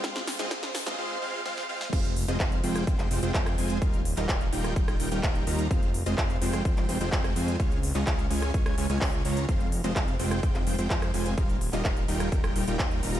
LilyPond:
<<
  \new Staff \with { instrumentName = "Supersaw synth" } { \time 4/4 \key f \minor \tempo 4 = 127 <aes c' f' c'' f''>8 r16 <aes c' f' c'' ees''>16 <aes c' f' c'' f''>8 r16 <aes c' f' c'' ees''>16 <aes c' f' c'' f''>8 <aes c' f' c'' f''>8 <aes c' f' c'' f''>8 <aes c' f' c'' f''>8 | <aes c' f' c'' f''>8 r16 <aes c' f' c'' ees''>16 c'8 <aes c' f' c'' g''>8 r16 <aes c' f' c'' g''>16 <aes c' f' c'' g''>16 <aes c' f' c'' g''>16 <aes c' f' c'' g''>8 <aes c' f' c'' aes''>8 | <g ees' bes'>8 r16 <g ees' f' bes' ees''>16 r8 <g ees' f' bes' g''>8 <g g''>16 <g ees' f' bes' g''>16 <g ees' f' bes' g''>16 <g ees' f' bes' g''>16 r8 <g ees' f' bes' bes''>8 | <aes c' f' c'' f''>8 r16 <aes c' f' c'' ees''>16 <aes c' f' c'' f''>8 <aes c' f' c'' g''>8 <aes c' c''>16 <aes c' f' c'' g''>16 <aes c' f' c'' g''>16 <aes c' f' c'' g''>16 <aes c' f' c'' g''>8 <aes c' f' c'' aes''>8 |
<aes des' f' des'' f''>8 r16 <aes des' f' des'' ees''>16 <des' des''>8 <aes des' f' des'' aes''>8 <aes des' f' des''>16 <aes des' f' des'' aes''>16 <aes des' f' des'' aes''>16 <aes des' f' des'' aes''>16 <aes des' f' aes''>8 <aes des' f' des'' bes''>8 | <aes c' f' c'' f''>8 r16 <aes c' f' c'' ees''>16 <c' f' c'' f''>8 <aes c' f' c'' g''>8 c'16 <aes c' f' c'' g''>16 <aes c' f' c'' g''>16 <aes c' f' c'' g''>16 <aes c' f' c''>8 <aes c' f' c'' aes''>8 | <g ees' f' bes' f''>8 r16 <g ees' f' bes' ees''>16 <ees' f' f''>8 <g ees' f' bes' g''>8 r16 <g ees' f' bes' g''>16 <g ees' f' bes' g''>16 <g ees' f' bes' g''>16 r8 <g ees' f' bes' bes''>8 | }
  \new Staff \with { instrumentName = "Analog synth bass" } { \clef bass \time 4/4 \key f \minor r1 | f,,8. f,,16 f,,8 f,,8 f,,16 f,,16 f,,16 f,,16 f,8 f,,8 | ees,,8. ees,,16 ees,,8 ees,,8 ees,,16 ees,,16 ees,,16 ees,,16 ees,,8 ees,8 | f,,8. f,,16 f,,8 f,,8 f,,16 f,,16 f,,16 f,,16 f,,8 f,8 |
des,8. des,16 des,8 des,8 des,16 des,16 des,16 des,16 des,8 des,8 | f,,8. f,,16 f,,8 f,,8 f,,16 f,,16 f,,16 f,,16 f,8 f,,8 | ees,,8. ees,,16 ees,,8 ees,,8 ees,,16 ees,,16 ees,,16 ees,,16 ees,8 ees,,8 | }
  \new DrumStaff \with { instrumentName = "Drums" } \drummode { \time 4/4 <hh bd sn>16 <hh sn>16 <hho sn>16 <hh sn>16 <hh bd sn>16 <hh sn>16 <hho sn>16 <hh sn>16 r4 sn16 sn8 sn16 | <cymc hh bd>16 hh16 hho16 hh16 <hc hh bd>16 hh16 hho16 <hh ss>16 <hh bd>16 <hc hh>16 hho16 hh16 <hc hh bd>16 <hh ss>16 hho16 hh16 | <hh bd>16 hh16 hho16 <hc hh>16 <hc hh bd>16 hh16 hho16 <hh ss>16 <hh bd>16 <hh ss>16 hho16 hh16 <hc hh bd>16 hh16 hho16 hh16 | <hh bd>16 hh16 hho16 hh16 <hc hh bd>16 hh16 hho16 <hh ss>16 <hh bd>16 <hc hh>16 hho16 hh16 <hc hh bd>16 <hh ss>16 hho16 hh16 |
<hh bd>16 hh16 hho16 <hc hh>16 <hc hh bd>16 hh16 hho16 <hh ss>16 <hh bd>16 <hh ss>16 hho16 hh16 <hc hho bd>16 hh16 hho16 hh16 | <hh bd>16 hh16 hho16 hh16 <hc hh bd>16 hh16 hho16 <hh ss>16 <hh bd>16 <hc hh>16 hho16 hh16 <hc hh bd>16 <hh ss>16 hho16 hh16 | <hh bd>16 hh16 hho16 <hc hh>16 <hc hh bd>16 hh16 hho16 <hh ss>16 <hh bd>16 <hh ss>16 hho16 hh16 <hc hh bd>16 hh16 hho16 hh16 | }
>>